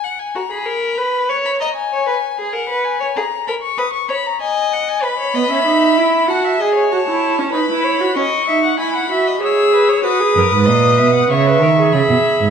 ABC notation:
X:1
M:4/4
L:1/16
Q:1/4=96
K:E
V:1 name="Violin"
f g ^a b4- b c' b a g4- g | f2 g2 ^a2 b c' d' c' b a g2 f g | b8 a2 g2 a4 | b4 c'4 b4 e'4 |
d'8 c'4 b4 |]
V:2 name="Violin"
z2 F G ^A2 B2 c2 d2 c B2 G | ^A B2 c G2 A2 B2 c2 d4 | B c d e4- e f e d c4- c | B2 c2 d2 e f g f e d c2 B c |
B4 d2 e f e4 e4 |]
V:3 name="Viola"
z16 | z16 | z2 B, C D2 E2 F2 G2 F E2 C | D E2 F C2 D2 E2 F2 G4 |
F G ^A B4- B c B A G4- G |]
V:4 name="Cello" clef=bass
z16 | z16 | z16 | z16 |
z2 F,, G,, ^A,,2 B,,2 C,2 D,2 C, B,,2 G,, |]